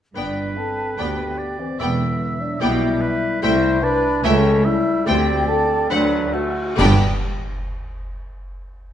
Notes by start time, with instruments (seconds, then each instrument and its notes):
0.15 double bass section G1, cello section G2, clarinet G3, viola section B3, french horn section D4, oboe B4, flute D5, violin section D5 G5
0.56 clarinet C4, french horn section A4, flute A5
0.98 double bass section D2, cello section D2, clarinet B3, viola section B3, french horn section G4, violin section D5 G5, flute G5
1.38 oboe D5
1.60 clarinet E3, french horn section C4, flute C5
1.79 double bass section E1, cello section E2, clarinet D3, viola section B3, french horn section B3, flute B4, violin section D5 G5, oboe E5
2.40 clarinet F#3, french horn section D4, flute D5
2.61 double bass section B1, cello section B2, clarinet G3, viola section B3, french horn section E4, oboe G4, violin section D5 G5, flute E5
3.01 oboe B4
3.42 cello section C2, double bass section C2, clarinet G3, viola section A3, french horn section E4, oboe C5, flute E5, violin section E5 G5
3.82 clarinet D4, french horn section B4, oboe D5, flute B5
4.23 cello section C#2, double bass section C#2, viola section A3, clarinet C#4, french horn section A4, oboe C#5, violin section E5 G5, flute A5
4.65 clarinet G3, french horn section E4, oboe E5, flute E5
5.06 cello section D2, double bass section D2, viola section A3, clarinet C4, french horn section G4, violin section C5 G5, oboe D5, flute G5
5.48 clarinet C4, french horn section A4, flute A5
5.90 cello section D2, double bass section D2, clarinet F#3, viola section A3, french horn section D4, oboe B4, violin section C5 F#5, flute D5
6.33 clarinet A3, french horn section F#4, oboe A4, flute F#5
6.78 double bass section G1, cello section G2, viola section B3, clarinet D4, french horn section G4, violin section D5 G5, flute G5, concert bass drum, crash